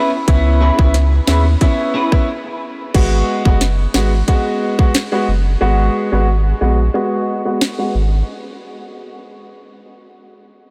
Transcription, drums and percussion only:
0.28 kick, closed hi-hat
0.79 kick
0.94 snare, closed hi-hat
1.27 snare
1.61 kick, closed hi-hat
2.12 kick, cross-stick
2.94 kick, closed hi-hat, crash
3.45 kick
3.61 snare, closed hi-hat
3.94 snare
4.28 kick, closed hi-hat
4.79 kick
4.94 snare, closed hi-hat
7.61 snare

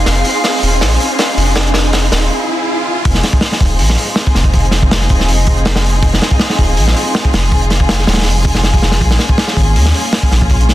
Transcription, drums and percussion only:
0.06 snare, open hi-hat
0.25 open hi-hat
0.44 snare, open hi-hat
0.63 open hi-hat
0.81 snare, open hi-hat
1.00 open hi-hat
1.19 snare, open hi-hat
1.38 open hi-hat
1.55 snare, open hi-hat
1.66 closed hi-hat
1.74 snare, open hi-hat
1.93 snare, open hi-hat
2.12 snare, open hi-hat
3.05 kick, open hi-hat
3.14 snare
3.23 snare, open hi-hat
3.33 kick
3.41 snare, open hi-hat
3.52 snare
3.60 kick, open hi-hat
3.79 open hi-hat
3.90 snare
3.98 open hi-hat
4.16 snare, open hi-hat
4.27 kick
4.35 snare, open hi-hat
4.44 kick
4.53 kick, open hi-hat
4.64 closed hi-hat
4.71 snare, open hi-hat
4.82 kick
4.91 snare, open hi-hat
5.01 snare
5.09 kick, open hi-hat
5.20 snare
5.28 open hi-hat
5.47 kick, open hi-hat
5.57 closed hi-hat
5.65 snare, open hi-hat
5.76 snare, open hi-hat
5.85 open hi-hat
6.03 kick, open hi-hat
6.14 snare
6.21 snare, open hi-hat
6.31 kick
6.40 snare, open hi-hat
6.50 snare
6.59 kick, open hi-hat
6.77 open hi-hat
6.88 snare
6.97 open hi-hat
7.15 snare, open hi-hat
7.25 kick
7.33 snare, open hi-hat
7.52 kick, open hi-hat
7.62 closed hi-hat
7.70 snare, open hi-hat
7.80 kick
7.89 snare, open hi-hat
7.99 snare
8.07 snare, open hi-hat
8.13 snare, open hi-hat
8.17 snare, open hi-hat
8.22 snare, open hi-hat
8.26 open hi-hat
8.45 kick, open hi-hat
8.55 snare
8.64 snare, open hi-hat
8.74 kick, open hi-hat
8.82 snare
8.92 snare, open hi-hat
9.01 kick, open hi-hat
9.11 snare
9.19 snare, open hi-hat
9.29 kick
9.38 snare, open hi-hat
9.48 snare
9.57 kick, open hi-hat
9.76 open hi-hat
9.86 snare
9.94 open hi-hat
10.13 snare, open hi-hat
10.23 kick
10.31 snare, open hi-hat
10.42 kick
10.50 kick, open hi-hat
10.61 closed hi-hat
10.69 snare, open hi-hat

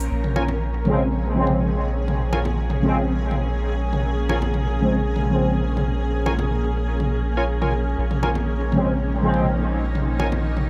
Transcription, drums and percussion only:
0.24 high tom
0.36 low conga
0.48 low conga
0.85 high tom
1.47 high tom
2.08 high tom
2.33 low conga
2.45 low conga
2.70 high tom
3.31 high tom
3.93 high tom
4.29 low conga
4.42 low conga
4.54 high tom
5.16 high tom
5.77 high tom
6.26 low conga
6.39 high tom, low conga
7.00 high tom
7.62 high tom
8.11 high tom
8.23 low conga
8.35 low conga
8.72 high tom
9.34 high tom
9.95 high tom
10.20 low conga
10.32 low conga
10.57 high tom

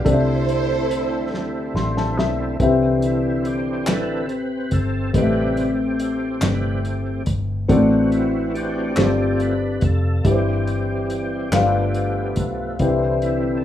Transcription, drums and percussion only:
0.06 kick, closed hi-hat
0.49 closed hi-hat
0.91 closed hi-hat
1.34 snare
1.76 snare
1.97 snare
2.19 snare
2.60 kick, closed hi-hat
3.02 closed hi-hat
3.45 closed hi-hat
3.87 snare, clap, closed hi-hat
4.29 closed hi-hat
4.71 kick, closed hi-hat
5.14 kick, closed hi-hat
5.57 closed hi-hat
6.00 closed hi-hat
6.41 snare, clap, closed hi-hat
6.85 closed hi-hat
7.26 kick, closed hi-hat
7.69 kick, closed hi-hat
8.12 closed hi-hat
8.55 closed hi-hat
8.97 snare, clap, closed hi-hat
9.40 closed hi-hat
9.81 kick, closed hi-hat
10.25 kick, closed hi-hat
10.67 closed hi-hat
11.10 closed hi-hat
11.52 snare, clap, closed hi-hat
11.94 closed hi-hat
12.36 kick, closed hi-hat
12.79 kick, closed hi-hat
13.22 closed hi-hat

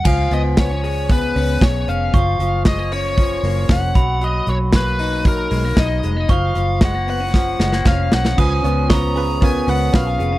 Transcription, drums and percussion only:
0.05 kick, crash
0.31 hi-hat pedal, open hi-hat
0.57 kick, snare, hi-hat pedal, open hi-hat
0.84 hi-hat pedal, open hi-hat
1.10 kick, hi-hat pedal, open hi-hat
1.36 hi-hat pedal, open hi-hat
1.61 kick, snare, hi-hat pedal, open hi-hat
1.88 hi-hat pedal, open hi-hat
2.14 kick, hi-hat pedal, open hi-hat
2.40 hi-hat pedal, open hi-hat
2.65 kick, snare, hi-hat pedal, open hi-hat
2.92 hi-hat pedal, open hi-hat
3.17 kick, hi-hat pedal, open hi-hat
3.44 hi-hat pedal, open hi-hat
3.69 kick, snare, hi-hat pedal, open hi-hat
3.95 kick, hi-hat pedal, open hi-hat
4.22 hi-hat pedal, open hi-hat
4.47 hi-hat pedal, open hi-hat
4.72 kick, snare, hi-hat pedal, open hi-hat
4.99 hi-hat pedal, open hi-hat
5.25 kick, hi-hat pedal, open hi-hat
5.51 hi-hat pedal, open hi-hat
5.77 kick, snare, hi-hat pedal, open hi-hat
6.03 hi-hat pedal, open hi-hat
6.29 kick, hi-hat pedal, open hi-hat
6.55 hi-hat pedal, open hi-hat
6.81 kick, snare, hi-hat pedal, open hi-hat
7.08 hi-hat pedal, open hi-hat
7.34 kick, snare
7.60 snare
7.72 snare
7.85 kick, snare
8.12 snare
8.25 snare
8.38 kick, crash
8.64 hi-hat pedal, open hi-hat
8.90 kick, snare, hi-hat pedal, open hi-hat
9.16 hi-hat pedal, open hi-hat
9.42 kick, hi-hat pedal, open hi-hat
9.68 hi-hat pedal, open hi-hat
9.94 kick, snare, hi-hat pedal, open hi-hat
10.20 hi-hat pedal, open hi-hat

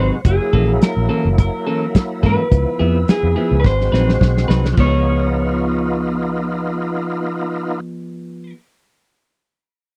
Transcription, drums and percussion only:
0.25 kick, closed hi-hat
0.53 kick
0.82 snare, closed hi-hat
1.38 kick, closed hi-hat
1.95 kick, snare, closed hi-hat
2.23 kick, snare
2.52 kick, closed hi-hat
3.08 snare, closed hi-hat
3.64 kick, snare
3.81 snare
3.94 snare
4.09 snare
4.21 kick, snare
4.37 snare
4.50 snare
4.65 snare
4.77 kick, crash

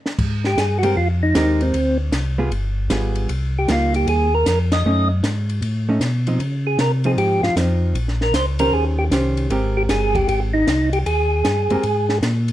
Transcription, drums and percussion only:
0.06 snare
0.18 kick, crash
0.44 snare
0.58 snare, hi-hat pedal, ride
0.83 ride
1.35 snare, hi-hat pedal, ride
1.61 ride
1.74 ride
2.12 snare, hi-hat pedal, ride
2.52 ride
2.90 snare, hi-hat pedal, ride
3.15 ride
3.29 ride
3.68 snare, hi-hat pedal, ride
3.94 ride
4.07 ride
4.46 snare, hi-hat pedal, ride
4.72 snare, ride
5.24 snare, hi-hat pedal, ride
5.49 ride
5.62 ride
6.01 snare, hi-hat pedal, ride
6.27 ride
6.40 ride
6.79 snare, hi-hat pedal, ride
7.04 ride
7.18 ride
7.43 snare
7.57 snare, hi-hat pedal, ride
7.95 ride
8.08 snare
8.21 snare
8.34 snare, hi-hat pedal, ride
8.59 ride
9.11 snare, hi-hat pedal, ride
9.37 ride
9.50 ride
9.89 snare, hi-hat pedal, ride
10.15 kick, ride
10.29 ride
10.67 snare, hi-hat pedal, ride
10.93 ride
11.06 ride
11.45 snare, hi-hat pedal, ride
11.70 ride
11.83 ride
12.09 snare
12.23 snare, hi-hat pedal, ride
12.48 ride

